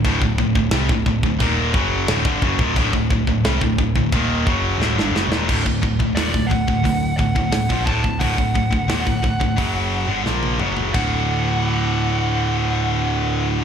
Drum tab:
CC |x---x---x---x---|x---x---x-------|x---------------|----------------|
HH |----------------|----------------|----o---o---o---|o---o---o-------|
SD |----o-------o---|----o-------oooo|----o-------o---|----o-------o---|
T1 |----------------|----------------|----------------|-------------o--|
T2 |----------------|----------------|----------------|--------------o-|
FT |----------------|----------------|----------------|---------------o|
BD |oooo-oooo-o--ooo|oooo-oooo-o-----|oooo-oooo-oo-ooo|oooo-oooo-------|

CC |x---------------|
HH |----------------|
SD |----------------|
T1 |----------------|
T2 |----------------|
FT |----------------|
BD |o---------------|